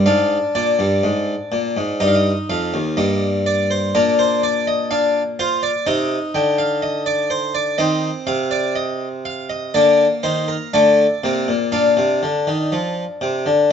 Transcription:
0.06 G#2 D4 F5
0.55 A#2 D5
0.79 G2
1.03 G#2
1.52 A#2
1.77 G#2
2.00 G2 D#4 D#5
2.08 F5
2.15 D#5
2.50 F2 F5
2.74 D#2
2.97 G2 A#3 D#5
3.46 D5
3.71 C5
3.95 A#2 D4 A#4
4.19 C5
4.43 D5
4.67 D#5
4.91 D4 F5
5.39 F4 C5
5.63 D5
5.87 C3 D#4 D#5
6.35 D3 G5
6.58 F5
6.82 D#5
7.06 D5
7.30 C5
7.55 D5
7.78 D#3 C4 D#5
8.27 C3 F5
8.51 D5
8.76 D#5
9.25 F5
9.50 D#5
9.74 D3 A#3 D5
10.23 D#3 C5
10.48 A#4
10.73 D3 A3 D5
11.24 C3 A#3
11.48 A#2
11.72 A#2 D4 F5
11.97 C3
12.23 D3
12.47 D#3
12.72 F3
13.21 C3
13.46 D3

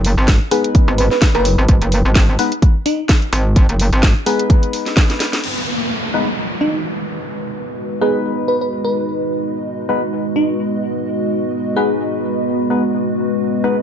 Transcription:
Already playing: F#1
0.05 open hi-hat
0.18 G#1
0.28 kick, snare, closed hi-hat
0.51 G#3 B3 D#4 G#4 B4, open hi-hat
0.64 closed hi-hat
0.75 kick, closed hi-hat
0.88 G#1
0.98 B4, open hi-hat
1.11 B4, snare
1.22 kick, snare, closed hi-hat
1.35 F#1 B4, closed hi-hat
1.45 open hi-hat
1.58 G#1
1.69 G#1, kick, closed hi-hat
1.82 F#1, closed hi-hat
1.92 open hi-hat
2.05 G#1
2.15 kick, snare, closed hi-hat
2.39 G#3 B3 D#4 B4, open hi-hat
2.52 closed hi-hat
2.62 kick, closed hi-hat
2.86 D#4, open hi-hat
3.09 kick, snare, closed hi-hat
3.22 closed hi-hat
3.33 G#1, open hi-hat
3.56 kick, closed hi-hat
3.69 F#1, closed hi-hat
3.80 open hi-hat
3.93 G#1, closed hi-hat
4.03 kick, snare, closed hi-hat
4.26 G#3 B3 D#4 G#4 B4, open hi-hat
4.39 closed hi-hat
4.50 kick, closed hi-hat
4.63 closed hi-hat
4.73 open hi-hat
4.86 snare, closed hi-hat
4.97 kick, snare, closed hi-hat
5.10 snare, closed hi-hat
5.20 snare, open hi-hat
5.33 snare, open hi-hat
5.44 G#3 B3 D#4 B4, crash, downlifter
5.70 F#4
6.14 G#3 B3 D#4 B4
6.34 D#5
6.56 B4
6.61 D#4
8.01 G#3 B3 D#4 G#4 B4
8.48 B4
8.61 B4
8.85 B4
9.18 D#5
9.89 G#3 B3 D#4 B4
10.36 D#4
11.76 G#3 B3 D#4 G#4 B4
12.70 G#3 B3 D#4 B4
12.94 C#4 B4
13.64 G#3 B3 D#4 B4

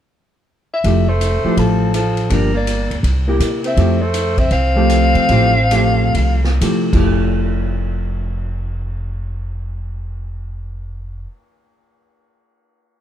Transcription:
0.74 E5
0.84 F1 F3 A3 E4 G4, kick, ride
1.08 A3 C5
1.21 hi-hat pedal, ride
1.44 F3 A3 E4 G4, muted upright bass stroke
1.57 A1 F3 A4, kick, ride
1.94 F3 A4, hi-hat pedal, ride
2.17 ride
2.30 G1 F3 G3 A#3 D4 A#4, kick, ride
2.54 A#3 D5
2.67 hi-hat pedal, ride
2.90 C#2, ride
3.03 C2, kick, ride
3.27 A#3 E4 G4
3.40 C3, hi-hat pedal, ride
3.64 C4 E5, ride
3.77 F2 F3 A3 E4 G4, kick, ride
4.02 A3 C5
4.14 hi-hat pedal, ride
4.38 C4 E5, kick, ride
4.51 C2 C4 F5, kick, ride
4.76 F3 A3 G4
4.90 hi-hat pedal, ride
5.15 C3, ride
5.29 A1 F3 A3 E4 G4, kick, ride
5.71 F3 A3 G4, hi-hat pedal, ride
6.14 C2, kick, ride
6.44 snare
6.61 C3 F3 A3 E4 G4, hi-hat pedal, ride
6.93 F1 F3 A3 E4 G4, kick, crash

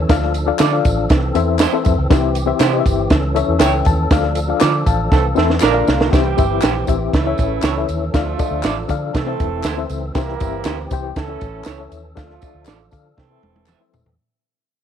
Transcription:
Already playing: A4
0.09 D2 F3 D4 F4 A4 D5 F5, kick, snare, closed hi-hat, tambourine
0.22 snare
0.34 closed hi-hat, tambourine
0.46 D4 F4 A4 D5 F5
0.59 D3 F4 A4 D5, snare, clap, closed hi-hat, tambourine
0.71 D4 F4 A4 D5 F5
0.85 A1, kick, closed hi-hat, tambourine
1.09 C2 E3 C4, kick, snare, closed hi-hat, tambourine
1.35 E2 C4 E4 A4 C5 E5, closed hi-hat, tambourine
1.59 E4 A4 C5, snare, clap, closed hi-hat, tambourine
1.73 C4 E4 A4 C5 E5
1.85 F2, kick, closed hi-hat, tambourine
1.98 C#2
2.10 C2 C4 E4 G4 C5 E5, kick, snare, closed hi-hat, tambourine
2.35 closed hi-hat, tambourine
2.46 C4 E4 G4 C5 E5
2.59 C3 E4 G4 C5, snare, clap, closed hi-hat, tambourine
2.72 C4 E4 G4 C5 D#5
2.80 E5
2.86 G1, kick, closed hi-hat, tambourine
3.10 C#2 C#4 A4, kick, snare, closed hi-hat, tambourine
3.35 C#4 E4 A4 C#5 E5, closed hi-hat, tambourine
3.48 E2
3.59 C#2 E4 A4 C#5 E5 G5, snare, clap, closed hi-hat, tambourine
3.85 D#2 A5, kick, closed hi-hat, tambourine
4.10 D2 F3 D4 F4 A4 D5 F5, kick, snare, closed hi-hat, tambourine
4.23 snare
4.35 closed hi-hat, tambourine
4.48 D4 F4 A4 D5 F5
4.60 D3 F4 A4 D5 D6, snare, clap, closed hi-hat, tambourine
4.86 A1 F5 A5, kick, closed hi-hat, tambourine
5.12 C2 E3 A3 C4 A4, kick, snare, tambourine
5.35 E2 E3 A3 C4 E4 A4 C5 E5, snare, tambourine
5.50 snare
5.60 A#1 D3 F3 A#3 D4 F4 A#4 D5, snare, clap, tambourine
5.73 D4 F4 A#4 D5 F5
5.87 C2, snare, tambourine
6.01 snare
6.11 C2 E3 G3 C4 E4 G4 C5 E5, kick, snare, closed hi-hat, tambourine
6.37 G1 C4 E4 G4 C5 E5, kick, closed hi-hat, tambourine
6.62 A#1 E4 G4 C5, snare, clap, closed hi-hat, tambourine
6.87 A1 C4 E4 G4 C5 E5, kick, closed hi-hat, tambourine
7.13 C#2 C#3 E3 A3 C#4 E4 A4, kick, snare, closed hi-hat
7.25 C#4 E4 A4 C#5 E5
7.38 A1, kick, closed hi-hat, tambourine
7.62 C#2 E4 A4 C#5, snare, clap, closed hi-hat, tambourine
7.77 C#4 E4 A4 C#5 E5
7.89 D#2, closed hi-hat, tambourine
8.13 D2 D3 F3 A3 D4 F4 A4 D5 F5, kick, snare, closed hi-hat, tambourine
8.38 D4 F4 A4 D5 D#5, kick, closed hi-hat, tambourine
8.46 E5
8.51 D2
8.63 A1 F4 A4 D5, snare, clap, closed hi-hat, tambourine
8.88 D3 D4 F4 A4 D5 F5, kick, closed hi-hat, tambourine
9.13 C3 E3 A3 C4 A4, kick, snare, closed hi-hat, tambourine
9.26 C4 E4 A4 C5 E5
9.40 E1, kick, closed hi-hat
9.64 D2 E4 A4 C5, snare, clap, closed hi-hat, tambourine
9.77 C4 E4 A4 C5 E5
9.89 C#2, closed hi-hat, tambourine
10.14 C2 G3 A#3 C4 E4 G4 A#4 C5 E5, kick, snare, closed hi-hat, tambourine
10.28 snare
10.40 G1 C4 E4 G4 C5 E5, kick, closed hi-hat, tambourine
10.65 D2 E4 G4 C5, snare, clap, closed hi-hat, tambourine
10.91 C2 C4 E4 G4 C5 G5, kick, closed hi-hat, tambourine
11.16 C#2 E3 A3 C#4 A4, kick, snare, closed hi-hat, tambourine
11.28 C#4 E4 A4 C#5 E5
11.41 A1, kick, closed hi-hat, tambourine
11.64 C#2 E4 A4 C#5, snare, clap, closed hi-hat, tambourine
11.79 C#4 E4 A4 C#5 E5
11.92 D#2, closed hi-hat, tambourine
12.15 D2 F3 A3 D4 F4 A4 D5 F5, kick, snare, closed hi-hat, tambourine
12.20 D3
12.30 snare
12.41 D4 F4 A4 D5 E5, kick, closed hi-hat, tambourine
12.55 D2
12.65 A1 F4 A4 D5, snare, clap, closed hi-hat, tambourine
12.91 D3 D4 F4 A4 D5 F5, kick, closed hi-hat, tambourine
13.17 C3 E3 A3 C4 A4, kick, snare
13.30 C4 E4 A4 C5 E5
13.43 E1, high tom
13.56 high tom
13.66 A4 C5 E5, clap, mid tom, tambourine
13.80 C4 E4 A4 C5 E5
13.93 E1, floor tom, tambourine
14.06 E2, floor tom

